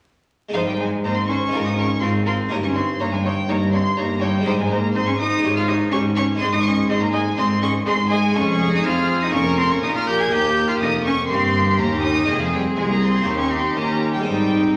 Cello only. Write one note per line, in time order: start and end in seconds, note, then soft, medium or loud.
0.54 0.59 F3 medium
0.67 0.78 G3 medium
0.79 1.03 G#3 medium
1.04 1.18 A#3 medium
1.16 1.30 C4 medium
1.29 1.67 C#4 medium
1.65 1.77 D#4 medium
1.77 2.03 C#4 medium
2.02 2.25 C4 medium
2.26 2.52 C4 medium
2.50 2.63 A#3 medium
2.64 2.77 C#4 medium
2.75 3.00 C4 medium
3.01 3.05 A#3 medium
3.12 3.17 G#3 medium
3.26 3.34 G3 medium
3.49 3.57 A#3 medium
3.75 3.83 C4 medium
3.99 4.25 A#3 medium
4.24 4.46 G3 medium
4.47 4.52 G3 loud
4.61 4.65 G#3 medium
4.72 4.96 A#3 medium
4.95 5.06 C4 loud
5.07 5.12 C#4 medium
5.19 5.55 D#4 loud
5.55 5.69 F4 loud
5.68 5.93 D#4 medium
5.91 6.16 C#4 medium
6.16 6.40 C#4 medium
6.41 6.46 C4 loud
6.53 6.58 D#4 medium
6.65 6.90 C#4 medium
6.89 7.02 C4 medium
7.01 7.12 A#3 medium
7.13 7.21 G#3 medium
7.36 7.64 C4 loud
7.62 7.86 C#4 medium
7.86 7.94 C4 loud
8.11 8.37 G#3 loud
8.36 8.72 C#4 loud
8.73 8.87 D#4 loud
8.85 9.23 F4 loud
9.22 9.35 D#4 loud
9.34 9.60 C#4 loud
9.58 9.72 C4 loud
9.70 9.85 C#4 medium
9.83 9.94 D#4 loud
9.95 10.00 F4 medium
10.07 10.21 G4 loud
10.19 10.33 G#4 loud
10.31 10.68 G4 loud
10.68 10.73 F4 medium
10.82 10.90 D#4 loud
11.07 11.15 C#4 loud
11.30 11.78 C4 loud
11.79 11.87 A#3 medium
12.03 12.29 D#4 medium
12.28 12.39 D#3 loud
12.40 12.52 F3 medium
12.52 12.60 G3 medium
12.77 12.90 G#3 loud
12.89 13.01 A#3 medium
13.02 13.37 C4 medium
13.37 13.51 C#4 medium
13.50 13.78 C4 medium
13.76 14.15 A#3 medium
14.14 14.26 G3 medium
14.27 14.76 G3 medium